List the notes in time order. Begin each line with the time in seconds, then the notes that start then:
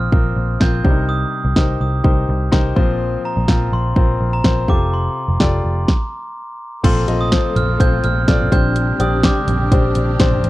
Already playing: A#2 F3 C4 F4 A#4 C5 F6
0.12 A#1 C4 F4 A#4 C5, kick
0.36 A#1
0.60 A#1 C4 F4 A#4 C5 G6, kick, snare
0.84 C2 C3 G3 D4 G4 A#4 C5, kick
0.90 D#4
1.09 D#6
1.45 C2
1.56 C2 D#4 G4 A#4 C5, kick, snare
1.81 C2 D#6
2.04 C2 D#4 G4 A#4 C5, kick
2.29 C2
2.51 C2 D#4 G4 A#4 C5, kick, snare
2.76 A#1 A#2 F3 C4 F4 A#4 C5, kick
3.25 A#5
3.37 A#1
3.48 A#1 C4 F4 A#4 C5, kick, snare
3.72 A#1 C6
3.96 A#1 C4 F4 A#4 C5, kick
4.21 A#1
4.33 A#5
4.44 A#1 C4 F4 A#4 C5, kick, snare
4.68 F1 C3 F4 G4 A4 C5 D6, kick
4.93 C6
5.28 F1
5.40 F1 F4 G4 A4 D5, kick, snare
5.65 F1
5.88 kick, snare
6.83 A#1 A#2 C3 F3 A3 C4 F4 A4 C5 C6, kick, closed hi-hat, crash
7.08 A#1 C4 F4 A4 D#5, closed hi-hat
7.21 D#6
7.32 C4 F4 A4 C5, kick, snare, closed hi-hat
7.56 A#1 F6, closed hi-hat, floor tom
7.80 A#1 C4 F4 A4 C5 G6, kick, closed hi-hat
8.04 A#1 F6, closed hi-hat
8.28 A#1 C4 F4 A4 D5 F6, kick, snare, closed hi-hat
8.40 floor tom
8.52 A#1 A#2 D3 G3 C4 D4 G4 C5 G6, kick, closed hi-hat
8.76 closed hi-hat
9.00 A#1 C4 D4 G4 D5 D#6, closed hi-hat
9.23 C4 D4 G4 C5 D6, kick, snare, closed hi-hat
9.48 A#1, closed hi-hat, floor tom
9.72 A#1 C4 D4 G4 C5, kick, closed hi-hat
9.95 A#1, closed hi-hat
10.19 A#1 C4 D4 G4 C5, kick, snare, closed hi-hat
10.31 floor tom
10.43 A1, closed hi-hat